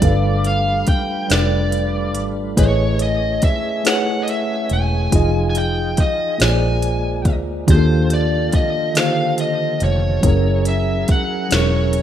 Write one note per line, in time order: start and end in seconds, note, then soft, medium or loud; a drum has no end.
0.00 0.83 G1 loud
0.00 0.83 G3 medium
0.00 2.55 G3 medium
0.00 2.53 A3 medium
0.00 0.84 D4 medium
0.00 2.55 F4 medium
0.00 0.85 A4 medium
0.00 2.55 B4 medium
0.00 0.85 B4 medium
0.00 0.48 D5 medium
0.00 kick loud
0.00 closed hi-hat medium
0.05 0.86 F5 medium
0.44 0.88 F5 medium
0.44 closed hi-hat medium
0.87 1.32 G5 loud
0.87 muted fingered electric bass stroke soft
0.87 kick medium
0.87 closed hi-hat medium
1.28 2.16 F1 medium
1.28 2.11 G3 medium
1.28 2.12 D4 medium
1.28 2.12 A4 medium
1.28 2.13 B4 medium
1.28 2.23 D5 medium
1.28 snare loud
1.28 closed hi-hat medium
1.32 2.13 D5 medium
1.72 closed hi-hat medium
2.15 2.54 G#1 medium
2.15 closed hi-hat soft
2.56 3.39 A1 medium
2.56 3.39 A3 medium
2.56 5.10 A3 medium
2.56 5.10 C#4 medium
2.56 3.39 E4 medium
2.56 3.39 G#4 medium
2.56 5.10 G#4 medium
2.56 3.40 B4 medium
2.56 3.40 C#5 medium
2.56 3.02 C#5 loud
2.56 kick loud
2.56 closed hi-hat medium
2.60 3.41 D#5 medium
2.99 3.44 D#5 medium
2.99 closed hi-hat medium
3.42 3.83 E5 loud
3.42 muted fingered electric bass stroke soft
3.42 kick loud
3.42 closed hi-hat medium
3.84 4.66 A3 medium
3.84 4.67 E4 medium
3.84 4.67 G#4 medium
3.84 4.68 B4 medium
3.84 4.68 C#5 medium
3.84 4.23 F#5 medium
3.84 snare loud
3.84 closed hi-hat medium
3.88 4.69 F#5 medium
4.23 4.29 D#5 medium
4.28 4.73 E5 medium
4.28 closed hi-hat soft
4.70 5.09 E1 medium
4.70 5.49 G#5 loud
4.70 closed hi-hat soft
5.11 5.94 F1 medium
5.11 5.94 F3 medium
5.11 6.39 F3 medium
5.11 6.39 D#4 medium
5.11 5.95 D#4 medium
5.11 5.94 F4 medium
5.11 6.39 F4 medium
5.11 6.39 G#4 medium
5.11 5.95 G#4 medium
5.11 kick loud
5.11 closed hi-hat medium
5.15 5.96 D#5 medium
5.50 5.56 G#5 medium
5.55 6.00 G5 medium
5.55 closed hi-hat medium
5.97 6.43 D#5 medium
5.97 muted fingered electric bass stroke soft
5.97 kick medium
5.97 closed hi-hat medium
6.38 7.26 A#1 loud
6.38 7.67 G#3 medium
6.38 7.21 A#3 medium
6.38 7.67 A#3 medium
6.38 7.22 F4 medium
6.38 7.22 G#4 medium
6.38 7.23 C5 medium
6.38 6.48 C#5 medium
6.38 snare loud
6.38 closed hi-hat medium
6.43 7.33 G#5 medium
6.49 7.27 D5 medium
6.82 closed hi-hat medium
7.25 7.64 D2 medium
7.25 kick loud
7.25 closed hi-hat soft
7.66 8.49 D#2 loud
7.66 8.49 D#3 medium
7.66 10.21 F3 medium
7.66 8.50 A#3 medium
7.66 8.50 D4 medium
7.66 10.21 F4 medium
7.66 8.51 F4 medium
7.66 10.21 G4 medium
7.66 8.51 G4 medium
7.66 10.21 A4 medium
7.66 kick loud
7.66 closed hi-hat medium
7.71 7.76 G#4 medium
7.71 8.13 C5 loud
7.77 8.55 A4 medium
8.10 8.55 D5 medium
8.10 closed hi-hat medium
8.53 8.98 D#5 loud
8.53 muted fingered electric bass stroke soft
8.53 kick loud
8.53 closed hi-hat medium
8.94 9.78 D3 medium
8.94 9.77 D#3 medium
8.94 9.78 A#3 medium
8.94 9.78 F4 medium
8.94 9.79 G4 medium
8.94 9.40 F5 loud
8.94 snare loud
8.94 closed hi-hat medium
8.98 9.79 C5 medium
9.38 9.83 D#5 medium
9.38 closed hi-hat medium
9.80 10.20 F1 medium
9.80 10.63 C#5 loud
9.80 closed hi-hat soft
10.21 11.05 F#1 medium
10.21 11.04 F#3 medium
10.21 12.02 F#3 medium
10.21 11.05 C#4 medium
10.21 12.02 E4 medium
10.21 11.05 E4 medium
10.21 12.02 G#4 medium
10.21 11.06 G#4 medium
10.21 12.02 A#4 medium
10.21 kick loud
10.21 closed hi-hat medium
10.26 11.07 A#4 medium
10.65 11.11 E5 medium
10.65 closed hi-hat medium
11.08 11.54 F#5 loud
11.08 muted fingered electric bass stroke soft
11.08 kick loud
11.08 closed hi-hat medium
11.49 12.02 E1 medium
11.49 12.02 F#3 medium
11.49 12.02 C#4 medium
11.49 12.02 E4 medium
11.49 12.02 G#4 medium
11.49 12.02 A#4 medium
11.49 snare loud
11.49 closed hi-hat medium
11.54 12.02 C#5 medium
11.93 closed hi-hat medium